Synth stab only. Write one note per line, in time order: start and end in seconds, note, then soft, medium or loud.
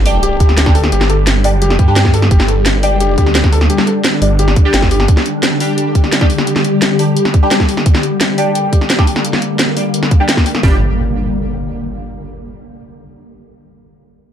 0.06 0.64 G3 medium
0.06 0.64 D4 medium
0.06 0.64 G4 loud
0.66 0.71 G3 loud
0.66 0.71 D4 medium
0.66 0.71 G4 loud
1.44 1.49 G3 medium
1.44 1.49 D4 medium
1.44 1.49 G4 medium
1.88 1.92 G3 medium
1.88 1.92 D4 medium
1.88 1.92 G4 loud
2.83 3.42 G3 medium
2.83 3.42 D4 medium
2.83 3.42 G4 loud
4.65 4.72 G3 loud
4.65 4.72 D4 medium
4.65 4.72 G4 loud
5.61 6.19 G3 medium
5.61 6.19 D4 medium
5.61 6.19 G4 loud
6.21 6.26 G3 loud
6.21 6.26 D4 medium
6.21 6.26 G4 loud
6.99 7.04 G3 medium
6.99 7.04 D4 medium
6.99 7.04 G4 medium
7.43 7.47 G3 loud
7.43 7.47 D4 medium
7.43 7.47 G4 loud
8.38 8.97 G3 medium
8.38 8.97 D4 medium
8.38 8.97 G4 loud
8.99 9.03 G3 loud
8.99 9.03 D4 medium
8.99 9.03 G4 loud
9.77 9.81 G3 medium
9.77 9.81 D4 medium
9.77 9.81 G4 medium
10.20 10.24 G3 loud
10.20 10.24 D4 medium
10.20 10.24 G4 loud
10.63 10.76 G3 medium
10.63 10.76 D4 medium
10.63 10.76 G4 loud